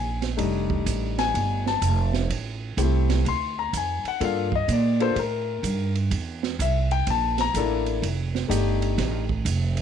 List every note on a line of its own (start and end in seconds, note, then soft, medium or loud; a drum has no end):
0.00 0.37 A#1 medium
0.00 0.20 G#5 medium
0.22 snare soft
0.22 ride soft
0.37 0.85 F1 medium
0.37 1.72 G3 medium
0.37 1.71 A3 medium
0.37 1.71 D4 medium
0.37 1.72 D#4 medium
0.37 kick soft
0.37 ride medium
0.70 kick medium
0.86 1.33 A1 medium
0.86 kick soft
0.86 hi-hat pedal medium
0.86 ride medium
1.18 1.63 G#5 loud
1.18 snare medium
1.18 ride soft
1.34 1.80 G1 medium
1.34 kick soft
1.34 ride medium
1.66 2.11 A5 medium
1.66 snare soft
1.82 2.28 F1 medium
1.82 kick soft
1.82 hi-hat pedal medium
1.82 ride medium
2.13 snare medium
2.29 2.76 A1 medium
2.29 kick soft
2.29 ride medium
2.77 3.24 C2 medium
2.77 3.25 A3 medium
2.77 3.25 C4 medium
2.77 3.26 E4 medium
2.77 3.26 G4 medium
2.77 kick soft
2.77 hi-hat pedal medium
2.77 ride medium
3.10 snare medium
3.10 ride medium
3.25 3.71 D2 medium
3.25 3.57 C6 medium
3.25 kick soft
3.25 ride medium
3.59 3.73 A#5 medium
3.73 4.02 F2 medium
3.73 kick soft
3.73 hi-hat pedal medium
3.73 ride medium
3.77 4.06 G#5 medium
4.04 muted upright bass stroke soft
4.04 ride soft
4.08 4.22 F#5 medium
4.20 4.67 G2 medium
4.20 4.49 A#3 medium
4.20 4.49 D4 medium
4.20 4.49 F4 medium
4.20 4.49 A4 medium
4.20 kick soft
4.20 ride medium
4.25 4.53 F5 medium
4.52 4.70 D#5 loud
4.52 kick medium
4.68 5.14 A#2 medium
4.68 kick soft
4.68 hi-hat pedal medium
4.68 ride medium
4.73 5.01 D5 medium
5.00 5.14 A#3 medium
5.00 5.15 D4 medium
5.00 5.15 F4 medium
5.00 5.13 A4 medium
5.00 5.17 C5 loud
5.00 ride soft
5.15 5.62 A2 medium
5.15 5.18 A4 medium
5.15 kick soft
5.15 ride medium
5.19 5.93 A#4 medium
5.63 6.10 G2 loud
5.63 kick soft
5.63 hi-hat pedal medium
5.63 ride medium
5.95 ride soft
6.11 6.57 E2 medium
6.11 kick soft
6.11 ride medium
6.43 snare medium
6.59 7.05 C2 medium
6.59 6.91 E5 medium
6.59 kick soft
6.59 hi-hat pedal medium
6.59 ride medium
6.91 7.07 G5 medium
6.91 ride soft
7.07 7.53 A#1 medium
7.07 7.39 A5 medium
7.07 kick soft
7.07 ride medium
7.38 7.84 A#5 loud
7.38 snare soft
7.38 ride medium
7.54 8.01 A1 medium
7.54 8.03 A#3 medium
7.54 8.03 D4 medium
7.54 8.04 E4 medium
7.54 8.03 A4 medium
7.54 kick soft
7.54 hi-hat pedal medium
7.54 ride medium
7.86 ride soft
8.02 8.49 F1 medium
8.02 kick soft
8.02 ride medium
8.35 snare soft
8.48 8.96 G1 medium
8.48 9.22 A3 medium
8.48 9.23 D4 medium
8.48 9.22 D#4 medium
8.48 9.23 G4 medium
8.48 kick soft
8.48 hi-hat pedal medium
8.48 ride medium
8.82 ride medium
8.98 9.44 A1 loud
8.98 kick soft
8.98 snare soft
8.98 ride medium
9.29 kick medium
9.45 9.82 F1 medium
9.45 kick soft
9.45 hi-hat pedal soft
9.45 ride medium
9.77 ride medium